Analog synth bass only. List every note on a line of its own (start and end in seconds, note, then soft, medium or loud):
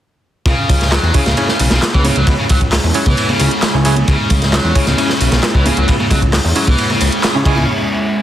0.46 0.55 C#2 loud
0.69 0.99 C#2 medium
1.03 1.12 E2 loud
1.26 1.34 C#2 medium
1.60 1.69 B1 medium
1.72 1.80 B1 loud
1.95 2.11 C#2 loud
2.17 2.25 C#2 medium
2.27 2.36 C#2 loud
2.50 2.79 C#2 medium
2.84 2.92 E2 loud
3.06 3.15 C#2 medium
3.40 3.49 C#2 loud
3.74 4.03 C#2 loud
4.08 4.16 C#2 loud
4.31 4.60 C#2 medium
4.65 4.73 E2 medium
4.87 4.95 C#2 medium
5.21 5.29 B1 medium
5.32 5.40 B1 loud
5.55 5.71 C#2 loud
5.78 5.86 C#2 medium
5.89 5.97 C#2 loud
6.11 6.40 C#2 medium
6.45 6.53 E2 loud
6.68 6.76 C#2 medium
7.01 7.10 C#2 loud
7.35 7.44 C#3 medium
7.45 7.67 C#2 loud